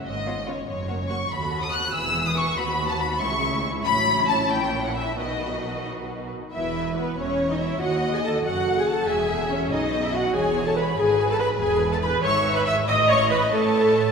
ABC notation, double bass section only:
X:1
M:6/8
L:1/8
Q:3/8=94
K:F#mix
V:1 name="Double bass section" clef=bass
G,,,3 F,,,3 | [K:E] D,,3 E,,,3 | D,,3 C,,3 | A,,,3 ^A,,,3 |
B,,,4- B,,, z | E,,,3 E,,,3 | D,,3 F,,,3 | E,,,3 B,,,3 |
E,,,3 G,,,3 | E,,,3 G,,,3 | A,,,3 A,,3 |]